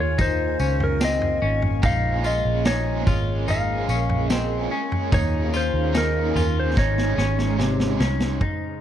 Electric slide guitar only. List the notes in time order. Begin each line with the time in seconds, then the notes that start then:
0.00 C#5
0.21 C5
0.84 A#4
1.04 D#5
1.86 F5
2.26 D#5
2.67 C#5
3.50 F5
4.31 D#5
5.14 C#5
5.57 C5
5.97 A#4
6.60 C5
6.79 C#5